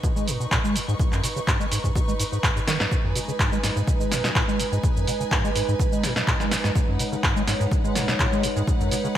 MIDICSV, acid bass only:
0, 0, Header, 1, 2, 480
1, 0, Start_track
1, 0, Key_signature, 5, "minor"
1, 0, Tempo, 480000
1, 995, Time_signature, 4, 2, 24, 8
1, 9174, End_track
2, 0, Start_track
2, 0, Title_t, "Acid bass"
2, 0, Program_c, 0, 38
2, 35, Note_on_c, 0, 47, 83
2, 76, Note_off_c, 0, 47, 0
2, 161, Note_on_c, 0, 56, 75
2, 274, Note_on_c, 0, 46, 72
2, 289, Note_off_c, 0, 56, 0
2, 378, Note_off_c, 0, 46, 0
2, 400, Note_on_c, 0, 47, 72
2, 463, Note_off_c, 0, 47, 0
2, 515, Note_on_c, 0, 46, 100
2, 584, Note_off_c, 0, 46, 0
2, 640, Note_on_c, 0, 56, 100
2, 755, Note_on_c, 0, 42, 72
2, 770, Note_off_c, 0, 56, 0
2, 796, Note_off_c, 0, 42, 0
2, 880, Note_on_c, 0, 44, 104
2, 944, Note_off_c, 0, 44, 0
2, 995, Note_on_c, 0, 44, 80
2, 1036, Note_off_c, 0, 44, 0
2, 1121, Note_on_c, 0, 42, 78
2, 1215, Note_off_c, 0, 42, 0
2, 1236, Note_on_c, 0, 47, 74
2, 1277, Note_off_c, 0, 47, 0
2, 1360, Note_on_c, 0, 49, 77
2, 1398, Note_off_c, 0, 49, 0
2, 1475, Note_on_c, 0, 44, 80
2, 1579, Note_off_c, 0, 44, 0
2, 1600, Note_on_c, 0, 56, 105
2, 1664, Note_off_c, 0, 56, 0
2, 1715, Note_on_c, 0, 44, 77
2, 1784, Note_off_c, 0, 44, 0
2, 1841, Note_on_c, 0, 44, 100
2, 1904, Note_off_c, 0, 44, 0
2, 1955, Note_on_c, 0, 47, 82
2, 1996, Note_off_c, 0, 47, 0
2, 2080, Note_on_c, 0, 56, 73
2, 2144, Note_off_c, 0, 56, 0
2, 2194, Note_on_c, 0, 44, 76
2, 2236, Note_off_c, 0, 44, 0
2, 2320, Note_on_c, 0, 44, 73
2, 2383, Note_off_c, 0, 44, 0
2, 2434, Note_on_c, 0, 44, 81
2, 2504, Note_off_c, 0, 44, 0
2, 2560, Note_on_c, 0, 44, 75
2, 2598, Note_off_c, 0, 44, 0
2, 2674, Note_on_c, 0, 51, 100
2, 2778, Note_off_c, 0, 51, 0
2, 2800, Note_on_c, 0, 44, 76
2, 2863, Note_off_c, 0, 44, 0
2, 2915, Note_on_c, 0, 44, 78
2, 2956, Note_off_c, 0, 44, 0
2, 3041, Note_on_c, 0, 42, 80
2, 3135, Note_off_c, 0, 42, 0
2, 3155, Note_on_c, 0, 47, 77
2, 3196, Note_off_c, 0, 47, 0
2, 3280, Note_on_c, 0, 49, 79
2, 3318, Note_off_c, 0, 49, 0
2, 3394, Note_on_c, 0, 44, 84
2, 3498, Note_off_c, 0, 44, 0
2, 3520, Note_on_c, 0, 56, 102
2, 3583, Note_off_c, 0, 56, 0
2, 3635, Note_on_c, 0, 44, 74
2, 3704, Note_off_c, 0, 44, 0
2, 3760, Note_on_c, 0, 44, 100
2, 3824, Note_off_c, 0, 44, 0
2, 3874, Note_on_c, 0, 47, 81
2, 3916, Note_off_c, 0, 47, 0
2, 4000, Note_on_c, 0, 56, 74
2, 4114, Note_on_c, 0, 46, 75
2, 4129, Note_off_c, 0, 56, 0
2, 4218, Note_off_c, 0, 46, 0
2, 4240, Note_on_c, 0, 47, 76
2, 4303, Note_off_c, 0, 47, 0
2, 4354, Note_on_c, 0, 46, 99
2, 4424, Note_off_c, 0, 46, 0
2, 4481, Note_on_c, 0, 56, 97
2, 4595, Note_on_c, 0, 42, 73
2, 4610, Note_off_c, 0, 56, 0
2, 4636, Note_off_c, 0, 42, 0
2, 4720, Note_on_c, 0, 44, 102
2, 4784, Note_off_c, 0, 44, 0
2, 4835, Note_on_c, 0, 44, 83
2, 4876, Note_off_c, 0, 44, 0
2, 4961, Note_on_c, 0, 42, 79
2, 5055, Note_off_c, 0, 42, 0
2, 5075, Note_on_c, 0, 47, 77
2, 5117, Note_off_c, 0, 47, 0
2, 5201, Note_on_c, 0, 49, 77
2, 5239, Note_off_c, 0, 49, 0
2, 5315, Note_on_c, 0, 44, 83
2, 5419, Note_off_c, 0, 44, 0
2, 5441, Note_on_c, 0, 56, 100
2, 5504, Note_off_c, 0, 56, 0
2, 5556, Note_on_c, 0, 44, 74
2, 5625, Note_off_c, 0, 44, 0
2, 5682, Note_on_c, 0, 44, 98
2, 5744, Note_off_c, 0, 44, 0
2, 5795, Note_on_c, 0, 47, 83
2, 5837, Note_off_c, 0, 47, 0
2, 5921, Note_on_c, 0, 56, 77
2, 6036, Note_on_c, 0, 46, 77
2, 6051, Note_off_c, 0, 56, 0
2, 6139, Note_off_c, 0, 46, 0
2, 6161, Note_on_c, 0, 47, 77
2, 6224, Note_off_c, 0, 47, 0
2, 6275, Note_on_c, 0, 46, 99
2, 6344, Note_off_c, 0, 46, 0
2, 6401, Note_on_c, 0, 56, 97
2, 6516, Note_on_c, 0, 42, 74
2, 6531, Note_off_c, 0, 56, 0
2, 6557, Note_off_c, 0, 42, 0
2, 6642, Note_on_c, 0, 44, 103
2, 6704, Note_off_c, 0, 44, 0
2, 6756, Note_on_c, 0, 44, 84
2, 6797, Note_off_c, 0, 44, 0
2, 6881, Note_on_c, 0, 42, 76
2, 6975, Note_off_c, 0, 42, 0
2, 6995, Note_on_c, 0, 47, 75
2, 7037, Note_off_c, 0, 47, 0
2, 7121, Note_on_c, 0, 49, 80
2, 7159, Note_off_c, 0, 49, 0
2, 7236, Note_on_c, 0, 44, 79
2, 7339, Note_off_c, 0, 44, 0
2, 7361, Note_on_c, 0, 56, 101
2, 7424, Note_off_c, 0, 56, 0
2, 7475, Note_on_c, 0, 44, 75
2, 7544, Note_off_c, 0, 44, 0
2, 7601, Note_on_c, 0, 44, 102
2, 7664, Note_off_c, 0, 44, 0
2, 7714, Note_on_c, 0, 47, 81
2, 7756, Note_off_c, 0, 47, 0
2, 7841, Note_on_c, 0, 56, 77
2, 7954, Note_on_c, 0, 46, 74
2, 7969, Note_off_c, 0, 56, 0
2, 8059, Note_off_c, 0, 46, 0
2, 8081, Note_on_c, 0, 47, 76
2, 8144, Note_off_c, 0, 47, 0
2, 8195, Note_on_c, 0, 46, 99
2, 8264, Note_off_c, 0, 46, 0
2, 8321, Note_on_c, 0, 56, 100
2, 8435, Note_on_c, 0, 42, 74
2, 8450, Note_off_c, 0, 56, 0
2, 8477, Note_off_c, 0, 42, 0
2, 8561, Note_on_c, 0, 44, 102
2, 8624, Note_off_c, 0, 44, 0
2, 8675, Note_on_c, 0, 44, 82
2, 8716, Note_off_c, 0, 44, 0
2, 8800, Note_on_c, 0, 42, 76
2, 8895, Note_off_c, 0, 42, 0
2, 8915, Note_on_c, 0, 47, 78
2, 8957, Note_off_c, 0, 47, 0
2, 9040, Note_on_c, 0, 49, 80
2, 9078, Note_off_c, 0, 49, 0
2, 9174, End_track
0, 0, End_of_file